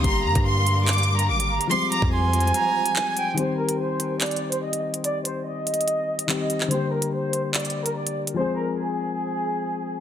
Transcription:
<<
  \new Staff \with { instrumentName = "Flute" } { \time 4/4 \key c \minor \tempo 4 = 144 bes''4 c'''2~ c'''8 bes''8 | d'''4 c'''4 bes''4 aes''8 g''8 | r1 | r1 |
r1 | r1 | }
  \new Staff \with { instrumentName = "Violin section" } { \time 4/4 \key c \minor c'''8 bes''8 c'''4 d'''8. bes''16 d'''8 r8 | c'''8 bes''8 aes''2. | c''8 bes'8 c''4 d''8. c''16 ees''8 r8 | d''8 c''8 ees''2 ees''4 |
c''8 bes'8 c''4 d''8. bes'16 d''8 r8 | c''8 bes'8 aes'2. | }
  \new Staff \with { instrumentName = "String section" } { \time 4/4 \key c \minor << { f''1~ | f''1 | r1 | r1 |
r1 | r1 | } \\ { <g d' bes'>1 | <f f' c''>1 | r1 | r1 |
r1 | r1 | } >> }
  \new Staff \with { instrumentName = "Synth keys" } { \clef bass \time 4/4 \key c \minor <d g bes g'>1 | <f g aes c'>1 | <ees g c' g'>1~ | <ees g c' g'>2. <ees g c' g'>4 |
<d g bes g'>1 | <f aes c' aes'>1 | }
  \new Staff \with { instrumentName = "808-style bass" } { \clef bass \time 4/4 \key c \minor g,,8 g,16 g,2~ g,16 aes,,8. r16 | r8. f,4~ f,16 r2 | r1 | r1 |
r1 | r1 | }
  \new DrumStaff \with { instrumentName = "Drums" } \drummode { \time 4/4 <hh bd>8. <hh bd>16 r8 hh8 <hc hh>32 hh32 hh32 hh16. hh16 r16 hh8 hh16 | hh8 hh16 bd16 \tuplet 3/2 { r16 r16 r16 hh16 hh16 hh16 } hh8. hh16 hc8 hh8 | hh8. hh16 r8 hh8 <hc hh>32 hh32 hh32 hh16. hh16 r16 hh8 hh16 | hh8 hh8 \tuplet 3/2 { r16 r16 r16 hh16 hh16 hh16 } hh8. hh16 hc8 hh16 hc16 |
hh8. hh16 r8 hh8 <hc hh>32 hh32 hh32 hh16. hh16 r16 hh8 hh16 | r4 r4 r4 r4 | }
>>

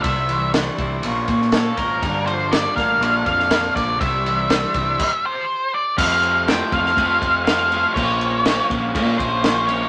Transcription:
<<
  \new Staff \with { instrumentName = "Lead electric guitar" } { \time 4/4 \key f \major \tempo 4 = 121 e''4 r2 a'8 bes'8~ | bes'8 c''8 d''8 f''4 f''4 d''8 | e''2~ e''8 c''4 d''8 | f''4 g''8 f''4. f''4 |
des''4. r4 c''4 des''8 | }
  \new Staff \with { instrumentName = "Clean electric guitar" } { \time 4/4 \key f \major c8 e8 d'8 e'8 bes,8 bes8 des'8 c''8 | g,8 f8 d'8 bes'8 bes,8 d8 bes8 f'8 | c8 e8 d'8 e'8 r2 | <f a c'>4 <f a c' e'>8 <f a c' e'>8 <f a c'>4 <f a c' e'>8 <f a c' e'>8 |
<bes, f bes des' f' c''>4 <bes, f bes des' f' c''>8 <bes, f bes des' f' c''>8 <bes, f bes des' f' c''>4 <bes, f bes des' f' c''>8 <bes, f bes des' f' c''>8 | }
  \new Staff \with { instrumentName = "Overdriven electric guitar" } { \time 4/4 \key f \major <c g c' e'>8 <g c' e'>4 <g c' e'>8 <bes, f bes des'>8 <f bes des'>8 <bes, f bes des'>8 <f bes des'>8 | <g, d g bes d'>8 <g bes d'>4 <g bes d'>8 <bes, d f bes d'>8 <f bes d'>8 <d f bes d'>8 <f bes d'>8 | <c g c' e'>8 <g c' e'>4 <g c' e'>8 r2 | <f, c f a c' f'>4 <f, c f a c' f'>8 <f, c f a c' f'>8 <f, c f a c' f'>4 <f, c f a c' f'>8 <f, c f a c' f'>8 |
<bes, f bes des'>4 <bes, f bes des'>8 <bes, f bes des'>8 <bes, f bes des'>4 <bes, f bes des'>8 <bes, f bes des'>8 | }
  \new Staff \with { instrumentName = "Fingered electric bass" } { \clef bass \time 4/4 \key f \major c,4. c,8 bes,,8 bes,4 aes,,8 | g,,4. a,,8 bes,,8 f,4 bes,,8 | c,4. c,8 r2 | f,4. f,8 f,8 f,4. |
bes,,4. bes,,8 bes,8 bes,,4. | }
  \new DrumStaff \with { instrumentName = "Drums" } \drummode { \time 4/4 <bd cymr>8 cymr8 <cymr sn>8 <bd cymr>8 cymr8 <bd cymr>16 sn16 <cymr sn>8 <bd cymr>8 | <bd cymr>8 cymr8 <cymr sn>8 <bd cymr sn>8 cymr8 <bd cymr>16 sn16 <cymr sn>8 <bd cymr>8 | <bd cymr>8 cymr8 <cymr sn>8 <bd cymr>8 <cymc bd>4 r4 | <cymc bd>8 cymc8 <cymc sn>8 <cymc bd>16 sn16 <cymc bd>8 <cymc bd>8 <cymc sn>8 cymc8 |
<cymc bd>8 cymc8 <cymc sn>8 <cymc bd>8 <cymc bd>8 <cymc bd>8 <cymc sn>8 cymc8 | }
>>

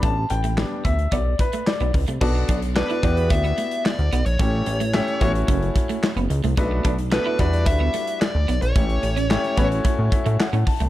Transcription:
<<
  \new Staff \with { instrumentName = "Lead electric guitar" } { \time 4/4 \key e \dorian \tempo 4 = 110 r1 | r4 b'4 e''4 d''8. cis''16~ | cis''4.~ cis''16 r2 r16 | r4 b'8 d''8 e''4 d''8. cis''16~ |
cis''4.~ cis''16 r2 r16 | }
  \new Staff \with { instrumentName = "Grand piano" } { \time 4/4 \key e \dorian << { a''8 g''4 e''8 d''8 b'8 d''8 r8 | r1 | r1 | r1 |
r2 r8 e''8 fis''8 a''8 | } \\ { <g b d'>8 r8 <g b d'>8 r2 r8 | <b d' fis' a' d''>8 r8 <b d' fis' a' d''>8 <b e' fis' g' d''>4. r4 | <a cis' e' g' cis''>8 r8 <a cis' e' g' e''>8 <a cis' e' fis' cis''>4. r4 | <a b d' fis' b'>8 r8 <a b d' fis' a'>8 <g d' e' fis' b'>4. r4 |
<a cis' e' g' cis''>8 r8 <a cis' e' g' cis''>8 <a cis' e' fis' b' cis''>4. r4 | } >> }
  \new Staff \with { instrumentName = "Clean electric guitar" } { \time 4/4 \key e \dorian a16 r8 a16 r8 b16 r16 b16 r8 a16 r16 b16 r16 a16 | b16 r16 d'16 r8 e'16 d'16 r8 b16 a16 r8. b16 r16 | a16 r8 a16 r8 b16 r16 cis'16 r8 a16 r16 b16 r16 a16 | b16 r16 d'16 r8 e'16 d'16 r8 b16 a16 r8. b16 r16 |
a16 r8 cis'16 r8 b16 r16 a16 r8 a16 r16 cis'16 r16 a16 | }
  \new Staff \with { instrumentName = "Analog synth bass" } { \clef bass \time 4/4 \key e \dorian a,,8 a,,8. r16 d,8 b,,8 r8. b,,16 cis,16 c,16 | b,,8 b,,8. r16 e,8 d,8 r8. d,16 b,,16 ais,,16 | a,,8 a,,8. r16 a,,8 fis,,8 r8. fis,,16 cis,16 c,16 | b,,8 b,,8. r16 e,8 d,8 r8. d,16 b,,16 ais,,16 |
a,,8 a,,8. r16 a,,8 r16 a,16 r16 a,16 r16 a,16 r16 c,16 | }
  \new DrumStaff \with { instrumentName = "Drums" } \drummode { \time 4/4 <hh bd>8 hh16 hh16 <hc sn>8 <hh bd>16 hh16 <hh bd>8 <hh bd>16 hh16 <hc sn>16 hh16 <hho bd>16 hh16 | <cymc bd>8 <hh bd>16 hh16 <hc sn>16 hh16 <hh bd>16 hh16 <hh bd>16 hh16 hh16 hh16 <hc sn>16 hh16 hh16 hh16 | <hh bd>8 hh16 hh16 <hc sn>16 hh16 <hh bd>16 hh16 <hh bd>16 hh16 <hh bd>16 hh16 <hc sn>16 hh16 hh16 hh16 | <hh bd>8 <hh bd>16 hh16 <hc sn>8 <hh bd>16 hh16 <hh bd>8 hh16 hh16 <hc sn>8 hh16 hh16 |
<hh bd>16 hh16 hh16 hh16 <hc sn>16 hh16 <hh bd>16 hh16 <hh bd>8 <hh bd>16 hh16 <hc sn>16 hh16 <hho bd>16 hh16 | }
>>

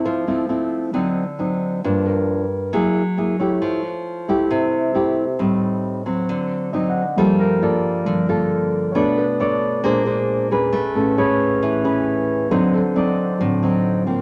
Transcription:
<<
  \new Staff \with { instrumentName = "Grand piano" } { \time 4/4 \key g \dorian \tempo 4 = 135 c''4~ c''16 r2 r8. | r8 bes'4~ bes'16 r4. r16 des''8~ | des''8 r2 e''4~ e''16 r16 | r2. ees''16 fis''8. |
c''8 bes'8 d''4. r4. | <cis'' d''>8 b'8 d''4. r4. | b'8 a'8 cis''4. r4. | c''8 a'8 d''4. r4. | }
  \new Staff \with { instrumentName = "Grand piano" } { \clef bass \time 4/4 \key g \dorian r1 | r1 | r1 | r1 |
<g, f bes>8 r4. <g, f bes>8 r4. | <b, a d'>4. r8 <bes, aes d'>2 | r8 <a, cis'>8 r2. | <d fis c'>2 <d fis c'>8 r4. | }
  \new Staff \with { instrumentName = "Nylon-string guitar" } { \time 4/4 \key g \dorian << { <a c' e'>8 <a c' e'>8 <a c' e'>4 <fis c' ees'>8 r8 <fis c' ees'>4 | <f bes d'>4. r8 <bes fes' aes'>8 r8 <bes fes' aes'>8 <a fes' g'>8~ | <a fes' g'>8 r4 <a e' g'>4. <a e' g'>8 r8 | <g c' ees'>4. <ges c'>4. <fis c' ees'>8 r8 |
<bes f' a'>4 <bes f' a'>4. <bes f' a'>4. | <d' a' cis''>8 r8 <d' a' cis''>4 <d' aes' c''>8 <d' aes' c''>4 <des' aes' b'>8~ | <des' aes' b'>4 <cis' gis' b'>4. <cis' gis' b'>4. | <fis c' ees'>8 r8 <fis c' ees'>4 r8 <fis c' ees'>4 <f bes c'>8 | } \\ { f2 d2 | g,2 ges2 | f2 c2 | a,2 d2 |
g2 d2 | b2 bes2 | a2 e2 | d2 a,2 | } >> }
>>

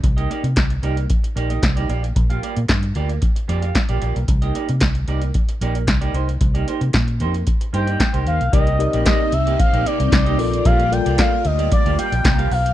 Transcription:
<<
  \new Staff \with { instrumentName = "Analog synth lead" } { \time 4/4 \key c \dorian \tempo 4 = 113 r1 | r1 | r1 | r2 r8 g''4 f''8 |
ees''4 ees''8 e''8 f''8 d''4. | f''8 g''8 f''8 ees''8 d''8 g''4 f''8 | }
  \new Staff \with { instrumentName = "Tine electric piano" } { \time 4/4 \key c \dorian r1 | r1 | r1 | r1 |
<ees' g' bes' d''>16 r16 <ees' g' bes' d''>4 r2 <f' a' bes' d''>8~ | <f' a' bes' d''>8 <f' a' bes' d''>4 r2 r8 | }
  \new Staff \with { instrumentName = "Clean electric guitar" } { \time 4/4 \key c \dorian r16 <bes ees' g' ees''>16 <bes ees' g' d''>16 r8. <bes ees' g' d''>8 r8 <bes ees' g' d''>16 <bes ees' g' ees''>16 r16 <bes ees' g' d''>16 <bes f' g' d''>16 r16 | r16 <bes f' g' f''>16 <bes f' g' d''>16 r8. <bes f' g' d''>8 r8 <bes f' g' d''>16 <bes f' g' f''>16 r16 <bes f' g' d''>16 <bes f' g' d''>16 r16 | r16 <bes ees' g' ees''>16 <bes ees' g' d''>16 r8. <bes ees' g' d''>8 r8 <bes ees' g' d''>8 r16 <bes ees' g' d''>16 <bes ees' g' c''>16 r16 | r16 <bes ees' g' d''>16 <bes ees' g' c''>16 r8. <bes ees' g' c''>8 r8 <bes ees' g' c''>16 <bes ees' g' d''>16 r16 <bes ees' g' c''>16 <bes ees' g' c''>16 r16 |
<bes ees' g' d''>8 r16 <bes ees' g' d''>16 <bes ees' g' d''>8 r16 <bes ees' g' d''>16 r16 <bes ees' g' d''>16 <bes ees' g' d''>16 r8 <bes ees' g' ees''>8 r16 | <bes f' g' d''>8 r16 <bes f' g' d''>16 <bes f' g' d''>8 r16 <bes f' g' d''>16 r16 <bes f' g' d''>16 <bes f' g' d''>16 r8 <bes f' g' f''>8 r16 | }
  \new Staff \with { instrumentName = "String machine" } { \time 4/4 \key c \dorian r1 | r1 | r1 | r1 |
<c bes c' ees'>2.~ <c bes c' ees'>8 <g f'>8~ | <g f'>1 | }
  \new Staff \with { instrumentName = "Fingered electric bass" } { \clef bass \time 4/4 \key c \dorian c,8 r16 c16 c,8 c,8 r8 bes,,8 c,8 bes,,8 | bes,,8 r16 bes,16 g,8 d,8 r8 f,8 r16 bes,,16 bes,,16 b,,16 | c,8 r16 c16 c,8 c,8 r8 bes,,8 c,8 c,8 | c,8 r16 c16 bes,8 f,8 r8 g,8 r16 c,16 ees,16 b,,16 |
c,8. bes,,16 r8 c,8 r16 bes,,16 r16 c,16 c,8 bes,,8 | bes,,8. c,16 r8 d,8 r16 d,16 r16 bes,,16 c,8 b,,8 | }
  \new DrumStaff \with { instrumentName = "Drums" } \drummode { \time 4/4 <hh bd>16 hh16 hh16 hh16 <hc hh bd sn>16 hh16 hh16 hh16 <hh bd>16 hh16 hh16 hh16 <hc hh bd sn>16 hh16 hh16 hh16 | <hh bd>16 hh16 hh16 hh16 <hc hh bd sn>16 hh16 hh16 hh16 <hh bd>16 hh16 hh16 hh16 <hc hh bd sn>16 hh16 hh16 hh16 | <hh bd>16 hh16 hh16 hh16 <hc hh bd sn>16 hh16 hh16 hh16 <hh bd>16 hh16 hh16 hh16 <hc hh bd sn>16 hh16 hh16 hh16 | <hh bd>16 hh16 hh16 hh16 <hc hh bd sn>16 hh16 hh16 hh16 <hh bd>16 hh16 hh16 hh16 <hc hh bd sn>16 hh16 hh16 hh16 |
<hh bd>16 hh16 hh16 hh16 <hc hh bd sn>8 hh16 hh16 <hh bd>16 hh16 hh16 hh16 <hc hh bd sn>16 hh16 hho16 hh16 | <hh bd>16 hh16 hh16 hh16 <hc hh bd sn>8 hh16 hh16 <hh bd>16 hh16 hh16 hh16 <hc hh bd sn>16 hh16 hho16 hh16 | }
>>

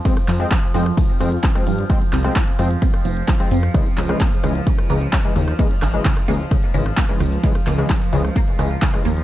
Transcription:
<<
  \new Staff \with { instrumentName = "Analog polysynth" } { \clef bass \time 4/4 \key des \lydian \tempo 4 = 130 <f aes c'>16 r8 <f aes c'>16 r8 <f aes c'>16 r8. <f aes c'>16 r8 <f aes c'>16 r8 | <f aes c'>16 r8 <f aes c'>16 r8 <f aes c'>16 r4. <f aes c'>16 r8 | <des fes aes>16 r8 <des fes aes>16 r8 <des fes aes>16 r8. <des fes aes>16 r8 <des fes aes>16 r8 | <des fes aes>16 r8 <des fes aes>16 r8 <des fes aes>16 r8. <des fes aes>16 r8 <des fes aes>16 r8 |
<des fes aes>16 r8 <des fes aes>16 r8 <des fes aes>16 r8. <des fes aes>16 r8 <des fes aes>16 r8 | }
  \new Staff \with { instrumentName = "Synth arpeggio sound" } { \clef bass \time 4/4 \key des \lydian c'8 f8 f8 c'8 f8 f8 c'8 f8 | f8 c'8 f8 f8 c'8 f8 f8 c'8 | des8 des8 bes8 des8 des8 bes8 des8 des8 | bes8 des8 des8 bes8 des8 des8 bes8 des8 |
des8 bes8 des8 des8 bes8 des8 des8 bes8 | }
  \new Staff \with { instrumentName = "Synth drone" } { \clef bass \time 4/4 \key des \lydian f1~ | f1~ | f1~ | f1~ |
f1 | }
  \new Staff \with { instrumentName = "Detuned saw bass" } { \clef bass \time 4/4 \key des \lydian r8 f,8 r8 f,8 r8 f,8 r8 g,8 | r8 c,8 r8 f,8 r8 f,,8 r8 f,8 | r8 des,8 r8 des,8 r8 des,8 r8 ees,8 | r8 aes,,8 r8 des,8 r8 aes,,8 r8 des,8 |
r8 des,8 r8 des,8 r8 des,8 r8 ees,8 | }
  \new DrumStaff \with { instrumentName = "Drums" } \drummode { \time 4/4 <hh bd cymr>16 <hh ss>16 <hc hho>16 hh16 <hc hh bd cymr ss>16 hh16 hho16 <hh ss>16 <hh bd cymr>16 hh16 <hho ss>16 hh16 <hc hh bd cymr>16 <hh ss>16 hho16 hh16 | <hh bd cymr ss>16 hh16 <hc hho>16 <hh ss>16 <hc hh bd cymr>16 hh16 <hho ss>16 hh16 <hh bd cymr>16 <hh ss>16 hho16 hh16 <hc hh bd cymr ss>16 hh16 hho16 <hh ss>16 | <hh bd cymr ss>16 hh16 <hc hho>16 <hh ss>16 <hc hh bd cymr>16 hh16 <hho ss>16 hh16 <hh bd cymr>16 <hh ss>16 hho16 hh16 <hc hh bd cymr ss>16 hh16 hho16 <hh ss>16 | <hh bd cymr>16 hh16 <hc hho ss>16 hh16 <hc hh bd cymr>16 <hh ss>16 hho16 hh16 <hh bd cymr ss>16 hh16 hho16 <hh ss>16 <hc hh bd cymr>16 hh16 <hho ss>16 hh16 |
<hh bd cymr>16 <hh ss>16 <hc hho>16 hh16 <hc hh bd cymr ss>16 hh16 hho16 <hh ss>16 <hh bd cymr>16 hh16 <hho ss>16 hh16 <hc hh bd cymr>16 <hh ss>16 hho16 hh16 | }
>>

